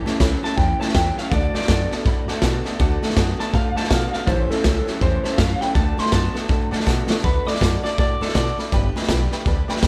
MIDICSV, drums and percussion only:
0, 0, Header, 1, 2, 480
1, 0, Start_track
1, 0, Key_signature, 2, "major"
1, 0, Tempo, 370370
1, 1707, Time_signature, 4, 2, 24, 8
1, 12797, End_track
2, 0, Start_track
2, 0, Title_t, "Drums"
2, 81, Note_on_c, 9, 38, 38
2, 211, Note_off_c, 9, 38, 0
2, 262, Note_on_c, 9, 36, 85
2, 266, Note_on_c, 9, 38, 107
2, 266, Note_on_c, 9, 44, 83
2, 391, Note_off_c, 9, 36, 0
2, 395, Note_off_c, 9, 38, 0
2, 395, Note_off_c, 9, 44, 0
2, 576, Note_on_c, 9, 38, 38
2, 706, Note_off_c, 9, 38, 0
2, 747, Note_on_c, 9, 36, 102
2, 753, Note_on_c, 9, 38, 34
2, 876, Note_off_c, 9, 36, 0
2, 883, Note_off_c, 9, 38, 0
2, 1054, Note_on_c, 9, 38, 34
2, 1142, Note_off_c, 9, 38, 0
2, 1142, Note_on_c, 9, 38, 32
2, 1227, Note_off_c, 9, 38, 0
2, 1227, Note_on_c, 9, 36, 86
2, 1227, Note_on_c, 9, 38, 112
2, 1227, Note_on_c, 9, 44, 88
2, 1357, Note_off_c, 9, 36, 0
2, 1357, Note_off_c, 9, 38, 0
2, 1357, Note_off_c, 9, 44, 0
2, 1525, Note_on_c, 9, 38, 33
2, 1654, Note_off_c, 9, 38, 0
2, 1699, Note_on_c, 9, 38, 33
2, 1705, Note_on_c, 9, 36, 112
2, 1828, Note_off_c, 9, 38, 0
2, 1835, Note_off_c, 9, 36, 0
2, 2004, Note_on_c, 9, 38, 37
2, 2082, Note_off_c, 9, 38, 0
2, 2082, Note_on_c, 9, 38, 36
2, 2181, Note_off_c, 9, 38, 0
2, 2181, Note_on_c, 9, 38, 112
2, 2181, Note_on_c, 9, 44, 81
2, 2184, Note_on_c, 9, 36, 82
2, 2310, Note_off_c, 9, 38, 0
2, 2310, Note_off_c, 9, 44, 0
2, 2313, Note_off_c, 9, 36, 0
2, 2481, Note_on_c, 9, 38, 36
2, 2611, Note_off_c, 9, 38, 0
2, 2656, Note_on_c, 9, 38, 36
2, 2666, Note_on_c, 9, 36, 104
2, 2786, Note_off_c, 9, 38, 0
2, 2796, Note_off_c, 9, 36, 0
2, 2956, Note_on_c, 9, 38, 35
2, 3085, Note_off_c, 9, 38, 0
2, 3134, Note_on_c, 9, 38, 108
2, 3134, Note_on_c, 9, 44, 88
2, 3143, Note_on_c, 9, 36, 90
2, 3264, Note_off_c, 9, 38, 0
2, 3264, Note_off_c, 9, 44, 0
2, 3273, Note_off_c, 9, 36, 0
2, 3434, Note_on_c, 9, 38, 33
2, 3563, Note_off_c, 9, 38, 0
2, 3622, Note_on_c, 9, 38, 35
2, 3626, Note_on_c, 9, 36, 105
2, 3751, Note_off_c, 9, 38, 0
2, 3755, Note_off_c, 9, 36, 0
2, 3921, Note_on_c, 9, 38, 37
2, 4016, Note_off_c, 9, 38, 0
2, 4016, Note_on_c, 9, 38, 35
2, 4104, Note_off_c, 9, 38, 0
2, 4104, Note_on_c, 9, 38, 111
2, 4104, Note_on_c, 9, 44, 86
2, 4105, Note_on_c, 9, 36, 83
2, 4233, Note_off_c, 9, 38, 0
2, 4233, Note_off_c, 9, 44, 0
2, 4235, Note_off_c, 9, 36, 0
2, 4400, Note_on_c, 9, 38, 38
2, 4530, Note_off_c, 9, 38, 0
2, 4576, Note_on_c, 9, 38, 34
2, 4583, Note_on_c, 9, 36, 104
2, 4705, Note_off_c, 9, 38, 0
2, 4713, Note_off_c, 9, 36, 0
2, 4879, Note_on_c, 9, 38, 36
2, 4971, Note_off_c, 9, 38, 0
2, 4971, Note_on_c, 9, 38, 36
2, 5063, Note_off_c, 9, 38, 0
2, 5063, Note_on_c, 9, 38, 115
2, 5063, Note_on_c, 9, 44, 90
2, 5064, Note_on_c, 9, 36, 88
2, 5192, Note_off_c, 9, 38, 0
2, 5192, Note_off_c, 9, 44, 0
2, 5194, Note_off_c, 9, 36, 0
2, 5358, Note_on_c, 9, 38, 33
2, 5487, Note_off_c, 9, 38, 0
2, 5526, Note_on_c, 9, 38, 35
2, 5540, Note_on_c, 9, 36, 112
2, 5655, Note_off_c, 9, 38, 0
2, 5669, Note_off_c, 9, 36, 0
2, 5840, Note_on_c, 9, 38, 38
2, 5970, Note_off_c, 9, 38, 0
2, 6018, Note_on_c, 9, 38, 109
2, 6018, Note_on_c, 9, 44, 82
2, 6020, Note_on_c, 9, 36, 90
2, 6147, Note_off_c, 9, 38, 0
2, 6147, Note_off_c, 9, 44, 0
2, 6150, Note_off_c, 9, 36, 0
2, 6314, Note_on_c, 9, 38, 35
2, 6444, Note_off_c, 9, 38, 0
2, 6487, Note_on_c, 9, 38, 34
2, 6498, Note_on_c, 9, 36, 108
2, 6616, Note_off_c, 9, 38, 0
2, 6628, Note_off_c, 9, 36, 0
2, 6798, Note_on_c, 9, 38, 35
2, 6928, Note_off_c, 9, 38, 0
2, 6977, Note_on_c, 9, 38, 118
2, 6977, Note_on_c, 9, 44, 88
2, 6979, Note_on_c, 9, 36, 88
2, 7106, Note_off_c, 9, 38, 0
2, 7106, Note_off_c, 9, 44, 0
2, 7109, Note_off_c, 9, 36, 0
2, 7272, Note_on_c, 9, 38, 33
2, 7401, Note_off_c, 9, 38, 0
2, 7445, Note_on_c, 9, 38, 35
2, 7456, Note_on_c, 9, 36, 106
2, 7575, Note_off_c, 9, 38, 0
2, 7585, Note_off_c, 9, 36, 0
2, 7752, Note_on_c, 9, 38, 37
2, 7852, Note_off_c, 9, 38, 0
2, 7852, Note_on_c, 9, 38, 35
2, 7933, Note_off_c, 9, 38, 0
2, 7933, Note_on_c, 9, 38, 101
2, 7933, Note_on_c, 9, 44, 85
2, 7937, Note_on_c, 9, 36, 90
2, 8063, Note_off_c, 9, 38, 0
2, 8063, Note_off_c, 9, 44, 0
2, 8067, Note_off_c, 9, 36, 0
2, 8236, Note_on_c, 9, 38, 35
2, 8366, Note_off_c, 9, 38, 0
2, 8410, Note_on_c, 9, 38, 34
2, 8415, Note_on_c, 9, 36, 108
2, 8539, Note_off_c, 9, 38, 0
2, 8545, Note_off_c, 9, 36, 0
2, 8716, Note_on_c, 9, 38, 37
2, 8810, Note_off_c, 9, 38, 0
2, 8810, Note_on_c, 9, 38, 34
2, 8901, Note_on_c, 9, 36, 92
2, 8903, Note_off_c, 9, 38, 0
2, 8903, Note_on_c, 9, 38, 63
2, 8903, Note_on_c, 9, 44, 89
2, 9031, Note_off_c, 9, 36, 0
2, 9032, Note_off_c, 9, 38, 0
2, 9032, Note_off_c, 9, 44, 0
2, 9205, Note_on_c, 9, 38, 88
2, 9334, Note_off_c, 9, 38, 0
2, 9384, Note_on_c, 9, 36, 113
2, 9387, Note_on_c, 9, 38, 35
2, 9513, Note_off_c, 9, 36, 0
2, 9517, Note_off_c, 9, 38, 0
2, 9684, Note_on_c, 9, 38, 35
2, 9780, Note_off_c, 9, 38, 0
2, 9780, Note_on_c, 9, 38, 35
2, 9867, Note_on_c, 9, 36, 84
2, 9877, Note_off_c, 9, 38, 0
2, 9877, Note_on_c, 9, 38, 106
2, 9877, Note_on_c, 9, 44, 80
2, 9996, Note_off_c, 9, 36, 0
2, 10006, Note_off_c, 9, 38, 0
2, 10006, Note_off_c, 9, 44, 0
2, 10170, Note_on_c, 9, 38, 36
2, 10300, Note_off_c, 9, 38, 0
2, 10346, Note_on_c, 9, 36, 108
2, 10350, Note_on_c, 9, 38, 33
2, 10476, Note_off_c, 9, 36, 0
2, 10480, Note_off_c, 9, 38, 0
2, 10649, Note_on_c, 9, 38, 35
2, 10733, Note_off_c, 9, 38, 0
2, 10733, Note_on_c, 9, 38, 34
2, 10823, Note_off_c, 9, 38, 0
2, 10823, Note_on_c, 9, 38, 115
2, 10823, Note_on_c, 9, 44, 82
2, 10824, Note_on_c, 9, 36, 88
2, 10953, Note_off_c, 9, 36, 0
2, 10953, Note_off_c, 9, 38, 0
2, 10953, Note_off_c, 9, 44, 0
2, 11130, Note_on_c, 9, 38, 32
2, 11259, Note_off_c, 9, 38, 0
2, 11306, Note_on_c, 9, 36, 111
2, 11313, Note_on_c, 9, 38, 36
2, 11436, Note_off_c, 9, 36, 0
2, 11443, Note_off_c, 9, 38, 0
2, 11612, Note_on_c, 9, 38, 38
2, 11693, Note_off_c, 9, 38, 0
2, 11693, Note_on_c, 9, 38, 37
2, 11775, Note_off_c, 9, 38, 0
2, 11775, Note_on_c, 9, 38, 109
2, 11775, Note_on_c, 9, 44, 88
2, 11779, Note_on_c, 9, 36, 87
2, 11905, Note_off_c, 9, 38, 0
2, 11905, Note_off_c, 9, 44, 0
2, 11908, Note_off_c, 9, 36, 0
2, 12076, Note_on_c, 9, 38, 37
2, 12206, Note_off_c, 9, 38, 0
2, 12259, Note_on_c, 9, 36, 108
2, 12259, Note_on_c, 9, 38, 32
2, 12388, Note_off_c, 9, 36, 0
2, 12389, Note_off_c, 9, 38, 0
2, 12556, Note_on_c, 9, 38, 37
2, 12653, Note_off_c, 9, 38, 0
2, 12653, Note_on_c, 9, 38, 34
2, 12736, Note_off_c, 9, 38, 0
2, 12736, Note_on_c, 9, 36, 85
2, 12736, Note_on_c, 9, 38, 112
2, 12736, Note_on_c, 9, 44, 89
2, 12797, Note_off_c, 9, 36, 0
2, 12797, Note_off_c, 9, 38, 0
2, 12797, Note_off_c, 9, 44, 0
2, 12797, End_track
0, 0, End_of_file